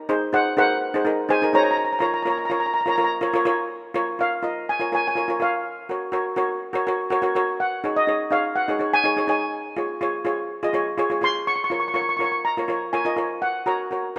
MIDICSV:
0, 0, Header, 1, 3, 480
1, 0, Start_track
1, 0, Key_signature, -5, "minor"
1, 0, Tempo, 485437
1, 1760, Time_signature, 4, 2, 24, 8
1, 14028, End_track
2, 0, Start_track
2, 0, Title_t, "Steel pan"
2, 0, Program_c, 0, 114
2, 334, Note_on_c, 0, 72, 61
2, 337, Note_on_c, 0, 78, 88
2, 553, Note_off_c, 0, 72, 0
2, 567, Note_off_c, 0, 78, 0
2, 577, Note_on_c, 0, 70, 71
2, 579, Note_on_c, 0, 78, 91
2, 1248, Note_off_c, 0, 70, 0
2, 1285, Note_on_c, 0, 72, 66
2, 1290, Note_on_c, 0, 80, 93
2, 1310, Note_off_c, 0, 78, 0
2, 1506, Note_off_c, 0, 72, 0
2, 1529, Note_on_c, 0, 73, 81
2, 1532, Note_off_c, 0, 80, 0
2, 1533, Note_on_c, 0, 82, 91
2, 1597, Note_off_c, 0, 73, 0
2, 1599, Note_off_c, 0, 82, 0
2, 1616, Note_on_c, 0, 82, 68
2, 1677, Note_off_c, 0, 82, 0
2, 1689, Note_on_c, 0, 82, 71
2, 1743, Note_off_c, 0, 82, 0
2, 1754, Note_on_c, 0, 82, 61
2, 1814, Note_off_c, 0, 82, 0
2, 1826, Note_on_c, 0, 82, 60
2, 1894, Note_off_c, 0, 82, 0
2, 1904, Note_on_c, 0, 82, 57
2, 1955, Note_off_c, 0, 82, 0
2, 1967, Note_on_c, 0, 82, 66
2, 2026, Note_off_c, 0, 82, 0
2, 2038, Note_on_c, 0, 82, 51
2, 2102, Note_off_c, 0, 82, 0
2, 2114, Note_on_c, 0, 82, 67
2, 2183, Note_off_c, 0, 82, 0
2, 2200, Note_on_c, 0, 82, 59
2, 2263, Note_off_c, 0, 82, 0
2, 2275, Note_on_c, 0, 82, 67
2, 2341, Note_off_c, 0, 82, 0
2, 2352, Note_on_c, 0, 82, 58
2, 2414, Note_off_c, 0, 82, 0
2, 2425, Note_on_c, 0, 82, 64
2, 2475, Note_off_c, 0, 82, 0
2, 2487, Note_on_c, 0, 82, 56
2, 2557, Note_off_c, 0, 82, 0
2, 2571, Note_on_c, 0, 82, 67
2, 2621, Note_off_c, 0, 82, 0
2, 2633, Note_on_c, 0, 82, 60
2, 2695, Note_off_c, 0, 82, 0
2, 2706, Note_on_c, 0, 82, 71
2, 2766, Note_off_c, 0, 82, 0
2, 2777, Note_on_c, 0, 82, 63
2, 2850, Note_off_c, 0, 82, 0
2, 2861, Note_on_c, 0, 82, 80
2, 2915, Note_off_c, 0, 82, 0
2, 2927, Note_on_c, 0, 82, 68
2, 2998, Note_off_c, 0, 82, 0
2, 3009, Note_on_c, 0, 82, 77
2, 3079, Note_off_c, 0, 82, 0
2, 4160, Note_on_c, 0, 77, 86
2, 4641, Note_on_c, 0, 80, 89
2, 4650, Note_off_c, 0, 77, 0
2, 4881, Note_off_c, 0, 80, 0
2, 4892, Note_on_c, 0, 80, 94
2, 5007, Note_off_c, 0, 80, 0
2, 5019, Note_on_c, 0, 80, 84
2, 5361, Note_on_c, 0, 77, 74
2, 5373, Note_off_c, 0, 80, 0
2, 5803, Note_off_c, 0, 77, 0
2, 7516, Note_on_c, 0, 78, 81
2, 7875, Note_on_c, 0, 75, 80
2, 7890, Note_off_c, 0, 78, 0
2, 8225, Note_on_c, 0, 77, 83
2, 8242, Note_off_c, 0, 75, 0
2, 8460, Note_on_c, 0, 78, 82
2, 8477, Note_off_c, 0, 77, 0
2, 8835, Note_on_c, 0, 80, 102
2, 8843, Note_off_c, 0, 78, 0
2, 9181, Note_off_c, 0, 80, 0
2, 9193, Note_on_c, 0, 80, 84
2, 9875, Note_off_c, 0, 80, 0
2, 11114, Note_on_c, 0, 84, 96
2, 11344, Note_on_c, 0, 85, 89
2, 11363, Note_off_c, 0, 84, 0
2, 11417, Note_off_c, 0, 85, 0
2, 11511, Note_on_c, 0, 85, 68
2, 11573, Note_off_c, 0, 85, 0
2, 11585, Note_on_c, 0, 85, 54
2, 11654, Note_off_c, 0, 85, 0
2, 11666, Note_on_c, 0, 85, 62
2, 11736, Note_off_c, 0, 85, 0
2, 11748, Note_on_c, 0, 85, 62
2, 11799, Note_off_c, 0, 85, 0
2, 11810, Note_on_c, 0, 85, 69
2, 11870, Note_off_c, 0, 85, 0
2, 11882, Note_on_c, 0, 85, 57
2, 11943, Note_off_c, 0, 85, 0
2, 11955, Note_on_c, 0, 85, 71
2, 12019, Note_off_c, 0, 85, 0
2, 12031, Note_on_c, 0, 85, 65
2, 12094, Note_off_c, 0, 85, 0
2, 12106, Note_on_c, 0, 85, 69
2, 12169, Note_off_c, 0, 85, 0
2, 12181, Note_on_c, 0, 85, 62
2, 12257, Note_off_c, 0, 85, 0
2, 12308, Note_on_c, 0, 82, 77
2, 12784, Note_on_c, 0, 80, 78
2, 12810, Note_off_c, 0, 82, 0
2, 13239, Note_off_c, 0, 80, 0
2, 13268, Note_on_c, 0, 78, 76
2, 13498, Note_off_c, 0, 78, 0
2, 13513, Note_on_c, 0, 82, 69
2, 14028, Note_off_c, 0, 82, 0
2, 14028, End_track
3, 0, Start_track
3, 0, Title_t, "Steel pan"
3, 0, Program_c, 1, 114
3, 88, Note_on_c, 1, 63, 87
3, 91, Note_on_c, 1, 68, 83
3, 96, Note_on_c, 1, 72, 91
3, 235, Note_off_c, 1, 63, 0
3, 237, Note_off_c, 1, 68, 0
3, 239, Note_off_c, 1, 72, 0
3, 323, Note_on_c, 1, 63, 74
3, 334, Note_on_c, 1, 68, 66
3, 334, Note_on_c, 1, 72, 70
3, 472, Note_off_c, 1, 63, 0
3, 478, Note_off_c, 1, 68, 0
3, 478, Note_off_c, 1, 72, 0
3, 563, Note_on_c, 1, 63, 77
3, 570, Note_on_c, 1, 68, 71
3, 577, Note_on_c, 1, 72, 87
3, 780, Note_off_c, 1, 63, 0
3, 784, Note_off_c, 1, 68, 0
3, 787, Note_off_c, 1, 72, 0
3, 931, Note_on_c, 1, 63, 76
3, 942, Note_on_c, 1, 68, 67
3, 948, Note_on_c, 1, 72, 75
3, 999, Note_off_c, 1, 63, 0
3, 1004, Note_off_c, 1, 68, 0
3, 1007, Note_off_c, 1, 72, 0
3, 1036, Note_on_c, 1, 63, 71
3, 1044, Note_on_c, 1, 68, 59
3, 1055, Note_on_c, 1, 70, 75
3, 1187, Note_off_c, 1, 63, 0
3, 1191, Note_off_c, 1, 68, 0
3, 1196, Note_off_c, 1, 70, 0
3, 1272, Note_on_c, 1, 63, 79
3, 1283, Note_on_c, 1, 68, 76
3, 1290, Note_on_c, 1, 72, 84
3, 1352, Note_off_c, 1, 63, 0
3, 1357, Note_off_c, 1, 68, 0
3, 1361, Note_off_c, 1, 72, 0
3, 1404, Note_on_c, 1, 63, 73
3, 1409, Note_on_c, 1, 68, 62
3, 1421, Note_on_c, 1, 70, 81
3, 1474, Note_off_c, 1, 63, 0
3, 1477, Note_off_c, 1, 68, 0
3, 1483, Note_off_c, 1, 70, 0
3, 1514, Note_on_c, 1, 63, 71
3, 1521, Note_on_c, 1, 68, 69
3, 1532, Note_on_c, 1, 72, 82
3, 1757, Note_off_c, 1, 63, 0
3, 1760, Note_off_c, 1, 68, 0
3, 1765, Note_off_c, 1, 72, 0
3, 1981, Note_on_c, 1, 65, 76
3, 1992, Note_on_c, 1, 70, 71
3, 1998, Note_on_c, 1, 73, 83
3, 2137, Note_off_c, 1, 65, 0
3, 2143, Note_off_c, 1, 70, 0
3, 2146, Note_off_c, 1, 73, 0
3, 2228, Note_on_c, 1, 65, 60
3, 2232, Note_on_c, 1, 70, 62
3, 2246, Note_on_c, 1, 73, 78
3, 2380, Note_off_c, 1, 65, 0
3, 2382, Note_off_c, 1, 70, 0
3, 2389, Note_off_c, 1, 73, 0
3, 2468, Note_on_c, 1, 65, 71
3, 2480, Note_on_c, 1, 70, 65
3, 2486, Note_on_c, 1, 73, 79
3, 2689, Note_off_c, 1, 65, 0
3, 2695, Note_off_c, 1, 70, 0
3, 2698, Note_off_c, 1, 73, 0
3, 2826, Note_on_c, 1, 65, 68
3, 2838, Note_on_c, 1, 70, 68
3, 2847, Note_on_c, 1, 73, 74
3, 2902, Note_off_c, 1, 65, 0
3, 2908, Note_off_c, 1, 70, 0
3, 2913, Note_off_c, 1, 73, 0
3, 2944, Note_on_c, 1, 65, 73
3, 2950, Note_on_c, 1, 70, 70
3, 2962, Note_on_c, 1, 73, 69
3, 3097, Note_off_c, 1, 65, 0
3, 3100, Note_off_c, 1, 70, 0
3, 3106, Note_off_c, 1, 73, 0
3, 3174, Note_on_c, 1, 65, 73
3, 3182, Note_on_c, 1, 70, 69
3, 3191, Note_on_c, 1, 73, 85
3, 3259, Note_off_c, 1, 65, 0
3, 3263, Note_off_c, 1, 70, 0
3, 3268, Note_off_c, 1, 73, 0
3, 3298, Note_on_c, 1, 65, 86
3, 3312, Note_on_c, 1, 70, 74
3, 3319, Note_on_c, 1, 73, 94
3, 3378, Note_off_c, 1, 65, 0
3, 3384, Note_off_c, 1, 70, 0
3, 3388, Note_off_c, 1, 73, 0
3, 3415, Note_on_c, 1, 65, 91
3, 3421, Note_on_c, 1, 70, 75
3, 3430, Note_on_c, 1, 73, 93
3, 3664, Note_off_c, 1, 65, 0
3, 3667, Note_off_c, 1, 70, 0
3, 3671, Note_off_c, 1, 73, 0
3, 3900, Note_on_c, 1, 65, 82
3, 3907, Note_on_c, 1, 70, 72
3, 3912, Note_on_c, 1, 73, 91
3, 4054, Note_off_c, 1, 65, 0
3, 4058, Note_off_c, 1, 70, 0
3, 4060, Note_off_c, 1, 73, 0
3, 4143, Note_on_c, 1, 65, 57
3, 4156, Note_on_c, 1, 70, 53
3, 4159, Note_on_c, 1, 73, 66
3, 4295, Note_off_c, 1, 65, 0
3, 4302, Note_off_c, 1, 70, 0
3, 4303, Note_off_c, 1, 73, 0
3, 4375, Note_on_c, 1, 65, 70
3, 4382, Note_on_c, 1, 70, 60
3, 4390, Note_on_c, 1, 75, 72
3, 4600, Note_off_c, 1, 65, 0
3, 4604, Note_off_c, 1, 70, 0
3, 4608, Note_off_c, 1, 75, 0
3, 4741, Note_on_c, 1, 65, 65
3, 4748, Note_on_c, 1, 70, 59
3, 4758, Note_on_c, 1, 73, 73
3, 4818, Note_off_c, 1, 65, 0
3, 4821, Note_off_c, 1, 70, 0
3, 4826, Note_off_c, 1, 73, 0
3, 4866, Note_on_c, 1, 65, 61
3, 4870, Note_on_c, 1, 70, 63
3, 4876, Note_on_c, 1, 73, 68
3, 5016, Note_off_c, 1, 65, 0
3, 5018, Note_off_c, 1, 70, 0
3, 5022, Note_off_c, 1, 73, 0
3, 5097, Note_on_c, 1, 65, 66
3, 5110, Note_on_c, 1, 70, 60
3, 5118, Note_on_c, 1, 73, 76
3, 5179, Note_off_c, 1, 65, 0
3, 5185, Note_off_c, 1, 70, 0
3, 5189, Note_off_c, 1, 73, 0
3, 5221, Note_on_c, 1, 65, 69
3, 5238, Note_on_c, 1, 70, 63
3, 5242, Note_on_c, 1, 73, 70
3, 5298, Note_off_c, 1, 65, 0
3, 5306, Note_off_c, 1, 70, 0
3, 5308, Note_off_c, 1, 73, 0
3, 5337, Note_on_c, 1, 65, 64
3, 5344, Note_on_c, 1, 70, 57
3, 5357, Note_on_c, 1, 73, 76
3, 5584, Note_off_c, 1, 65, 0
3, 5587, Note_off_c, 1, 70, 0
3, 5594, Note_off_c, 1, 73, 0
3, 5827, Note_on_c, 1, 66, 62
3, 5832, Note_on_c, 1, 70, 55
3, 5845, Note_on_c, 1, 73, 68
3, 5977, Note_off_c, 1, 66, 0
3, 5979, Note_off_c, 1, 70, 0
3, 5986, Note_off_c, 1, 73, 0
3, 6052, Note_on_c, 1, 66, 70
3, 6062, Note_on_c, 1, 70, 69
3, 6065, Note_on_c, 1, 73, 81
3, 6209, Note_off_c, 1, 66, 0
3, 6215, Note_off_c, 1, 70, 0
3, 6216, Note_off_c, 1, 73, 0
3, 6291, Note_on_c, 1, 66, 82
3, 6299, Note_on_c, 1, 70, 76
3, 6306, Note_on_c, 1, 73, 85
3, 6518, Note_off_c, 1, 66, 0
3, 6522, Note_off_c, 1, 70, 0
3, 6526, Note_off_c, 1, 73, 0
3, 6657, Note_on_c, 1, 66, 75
3, 6666, Note_on_c, 1, 70, 69
3, 6678, Note_on_c, 1, 73, 89
3, 6736, Note_off_c, 1, 66, 0
3, 6740, Note_off_c, 1, 70, 0
3, 6746, Note_off_c, 1, 73, 0
3, 6791, Note_on_c, 1, 66, 74
3, 6795, Note_on_c, 1, 70, 62
3, 6807, Note_on_c, 1, 73, 83
3, 6939, Note_off_c, 1, 66, 0
3, 6941, Note_off_c, 1, 70, 0
3, 6947, Note_off_c, 1, 73, 0
3, 7024, Note_on_c, 1, 66, 88
3, 7036, Note_on_c, 1, 70, 71
3, 7045, Note_on_c, 1, 73, 94
3, 7103, Note_off_c, 1, 66, 0
3, 7109, Note_off_c, 1, 70, 0
3, 7113, Note_off_c, 1, 73, 0
3, 7140, Note_on_c, 1, 66, 85
3, 7148, Note_on_c, 1, 70, 73
3, 7152, Note_on_c, 1, 73, 80
3, 7217, Note_off_c, 1, 66, 0
3, 7222, Note_off_c, 1, 70, 0
3, 7223, Note_off_c, 1, 73, 0
3, 7271, Note_on_c, 1, 66, 81
3, 7276, Note_on_c, 1, 70, 74
3, 7281, Note_on_c, 1, 73, 90
3, 7512, Note_off_c, 1, 66, 0
3, 7514, Note_off_c, 1, 70, 0
3, 7517, Note_off_c, 1, 73, 0
3, 7750, Note_on_c, 1, 63, 69
3, 7751, Note_on_c, 1, 68, 63
3, 7762, Note_on_c, 1, 73, 71
3, 7899, Note_off_c, 1, 63, 0
3, 7899, Note_off_c, 1, 68, 0
3, 7905, Note_off_c, 1, 73, 0
3, 7980, Note_on_c, 1, 63, 61
3, 7986, Note_on_c, 1, 68, 60
3, 7996, Note_on_c, 1, 73, 74
3, 8134, Note_off_c, 1, 63, 0
3, 8137, Note_off_c, 1, 68, 0
3, 8142, Note_off_c, 1, 73, 0
3, 8212, Note_on_c, 1, 63, 65
3, 8227, Note_on_c, 1, 68, 60
3, 8233, Note_on_c, 1, 73, 76
3, 8440, Note_off_c, 1, 63, 0
3, 8447, Note_off_c, 1, 68, 0
3, 8450, Note_off_c, 1, 73, 0
3, 8585, Note_on_c, 1, 63, 71
3, 8591, Note_on_c, 1, 68, 63
3, 8603, Note_on_c, 1, 73, 71
3, 8661, Note_off_c, 1, 63, 0
3, 8664, Note_off_c, 1, 68, 0
3, 8670, Note_off_c, 1, 73, 0
3, 8692, Note_on_c, 1, 63, 63
3, 8702, Note_on_c, 1, 68, 54
3, 8709, Note_on_c, 1, 73, 73
3, 8851, Note_off_c, 1, 63, 0
3, 8855, Note_off_c, 1, 68, 0
3, 8859, Note_off_c, 1, 73, 0
3, 8938, Note_on_c, 1, 63, 69
3, 8948, Note_on_c, 1, 68, 64
3, 8952, Note_on_c, 1, 73, 84
3, 9021, Note_off_c, 1, 63, 0
3, 9026, Note_off_c, 1, 68, 0
3, 9028, Note_off_c, 1, 73, 0
3, 9064, Note_on_c, 1, 63, 62
3, 9068, Note_on_c, 1, 68, 64
3, 9081, Note_on_c, 1, 73, 75
3, 9140, Note_off_c, 1, 63, 0
3, 9143, Note_off_c, 1, 68, 0
3, 9149, Note_off_c, 1, 73, 0
3, 9173, Note_on_c, 1, 63, 71
3, 9184, Note_on_c, 1, 68, 58
3, 9186, Note_on_c, 1, 73, 80
3, 9424, Note_off_c, 1, 63, 0
3, 9429, Note_off_c, 1, 68, 0
3, 9430, Note_off_c, 1, 73, 0
3, 9656, Note_on_c, 1, 65, 69
3, 9668, Note_on_c, 1, 68, 57
3, 9673, Note_on_c, 1, 73, 67
3, 9813, Note_off_c, 1, 65, 0
3, 9819, Note_off_c, 1, 68, 0
3, 9822, Note_off_c, 1, 73, 0
3, 9898, Note_on_c, 1, 65, 74
3, 9905, Note_on_c, 1, 68, 67
3, 9916, Note_on_c, 1, 73, 83
3, 10054, Note_off_c, 1, 65, 0
3, 10058, Note_off_c, 1, 68, 0
3, 10063, Note_off_c, 1, 73, 0
3, 10132, Note_on_c, 1, 65, 83
3, 10140, Note_on_c, 1, 68, 72
3, 10150, Note_on_c, 1, 73, 84
3, 10361, Note_off_c, 1, 65, 0
3, 10365, Note_off_c, 1, 68, 0
3, 10370, Note_off_c, 1, 73, 0
3, 10508, Note_on_c, 1, 65, 77
3, 10512, Note_on_c, 1, 68, 74
3, 10525, Note_on_c, 1, 75, 87
3, 10584, Note_off_c, 1, 65, 0
3, 10586, Note_off_c, 1, 68, 0
3, 10592, Note_off_c, 1, 75, 0
3, 10613, Note_on_c, 1, 65, 69
3, 10618, Note_on_c, 1, 68, 72
3, 10626, Note_on_c, 1, 73, 88
3, 10772, Note_off_c, 1, 65, 0
3, 10775, Note_off_c, 1, 68, 0
3, 10779, Note_off_c, 1, 73, 0
3, 10854, Note_on_c, 1, 65, 77
3, 10862, Note_on_c, 1, 68, 79
3, 10871, Note_on_c, 1, 73, 94
3, 10940, Note_off_c, 1, 65, 0
3, 10944, Note_off_c, 1, 68, 0
3, 10949, Note_off_c, 1, 73, 0
3, 10975, Note_on_c, 1, 65, 64
3, 10988, Note_on_c, 1, 68, 64
3, 10994, Note_on_c, 1, 73, 65
3, 11057, Note_off_c, 1, 65, 0
3, 11064, Note_off_c, 1, 68, 0
3, 11067, Note_off_c, 1, 73, 0
3, 11088, Note_on_c, 1, 65, 59
3, 11097, Note_on_c, 1, 68, 60
3, 11106, Note_on_c, 1, 73, 73
3, 11343, Note_off_c, 1, 65, 0
3, 11347, Note_off_c, 1, 68, 0
3, 11352, Note_off_c, 1, 73, 0
3, 11569, Note_on_c, 1, 65, 68
3, 11582, Note_on_c, 1, 70, 58
3, 11585, Note_on_c, 1, 73, 68
3, 11731, Note_off_c, 1, 65, 0
3, 11738, Note_off_c, 1, 70, 0
3, 11740, Note_off_c, 1, 73, 0
3, 11806, Note_on_c, 1, 65, 64
3, 11816, Note_on_c, 1, 70, 59
3, 11824, Note_on_c, 1, 73, 74
3, 11970, Note_off_c, 1, 65, 0
3, 11975, Note_off_c, 1, 70, 0
3, 11980, Note_off_c, 1, 73, 0
3, 12055, Note_on_c, 1, 65, 60
3, 12065, Note_on_c, 1, 70, 62
3, 12076, Note_on_c, 1, 73, 77
3, 12285, Note_off_c, 1, 65, 0
3, 12290, Note_off_c, 1, 70, 0
3, 12295, Note_off_c, 1, 73, 0
3, 12432, Note_on_c, 1, 65, 68
3, 12441, Note_on_c, 1, 70, 61
3, 12451, Note_on_c, 1, 73, 68
3, 12507, Note_off_c, 1, 65, 0
3, 12512, Note_off_c, 1, 70, 0
3, 12517, Note_off_c, 1, 73, 0
3, 12538, Note_on_c, 1, 65, 68
3, 12547, Note_on_c, 1, 70, 58
3, 12557, Note_on_c, 1, 73, 78
3, 12697, Note_off_c, 1, 65, 0
3, 12702, Note_off_c, 1, 70, 0
3, 12707, Note_off_c, 1, 73, 0
3, 12785, Note_on_c, 1, 65, 66
3, 12795, Note_on_c, 1, 70, 60
3, 12795, Note_on_c, 1, 73, 83
3, 12868, Note_off_c, 1, 65, 0
3, 12873, Note_off_c, 1, 70, 0
3, 12873, Note_off_c, 1, 73, 0
3, 12902, Note_on_c, 1, 65, 66
3, 12909, Note_on_c, 1, 70, 64
3, 12913, Note_on_c, 1, 75, 76
3, 12983, Note_off_c, 1, 65, 0
3, 12987, Note_off_c, 1, 70, 0
3, 12989, Note_off_c, 1, 75, 0
3, 13017, Note_on_c, 1, 65, 73
3, 13027, Note_on_c, 1, 70, 60
3, 13035, Note_on_c, 1, 73, 73
3, 13270, Note_off_c, 1, 65, 0
3, 13275, Note_off_c, 1, 70, 0
3, 13279, Note_off_c, 1, 73, 0
3, 13507, Note_on_c, 1, 66, 70
3, 13515, Note_on_c, 1, 70, 59
3, 13523, Note_on_c, 1, 73, 75
3, 13663, Note_off_c, 1, 66, 0
3, 13667, Note_off_c, 1, 70, 0
3, 13671, Note_off_c, 1, 73, 0
3, 13753, Note_on_c, 1, 66, 56
3, 13763, Note_on_c, 1, 70, 55
3, 13772, Note_on_c, 1, 73, 64
3, 13906, Note_off_c, 1, 66, 0
3, 13912, Note_off_c, 1, 70, 0
3, 13916, Note_off_c, 1, 73, 0
3, 14028, End_track
0, 0, End_of_file